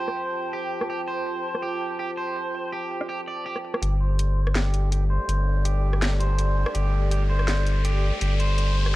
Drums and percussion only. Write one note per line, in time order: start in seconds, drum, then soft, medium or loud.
0.08 cross-stick soft
0.17 closed hi-hat medium
0.35 closed hi-hat soft
0.53 closed hi-hat medium
0.81 cross-stick medium
0.90 closed hi-hat medium
1.26 closed hi-hat medium
1.55 cross-stick soft
1.63 closed hi-hat medium
1.81 closed hi-hat soft
2.00 closed hi-hat medium
2.36 closed hi-hat medium
2.54 closed hi-hat soft
2.73 closed hi-hat medium
2.91 closed hi-hat soft
3.01 cross-stick medium
3.10 closed hi-hat medium
3.28 closed hi-hat soft
3.46 closed hi-hat medium
3.56 cross-stick soft
3.65 closed hi-hat soft
3.74 cross-stick medium
3.83 closed hi-hat medium
4.19 closed hi-hat medium
4.47 cross-stick medium
4.55 snare loud
4.55 closed hi-hat medium
4.74 closed hi-hat soft
4.92 closed hi-hat medium
5.29 closed hi-hat medium
5.65 closed hi-hat medium
5.93 cross-stick soft
6.02 snare loud
6.02 closed hi-hat medium
6.20 closed hi-hat soft
6.39 closed hi-hat medium
6.66 cross-stick medium
6.75 closed hi-hat medium
7.11 closed hi-hat medium
7.39 cross-stick soft
7.48 snare loud
7.48 closed hi-hat medium
7.67 closed hi-hat soft
7.85 closed hi-hat medium
8.21 closed hi-hat medium
8.40 closed hi-hat soft
8.58 closed hi-hat medium
8.86 cross-stick soft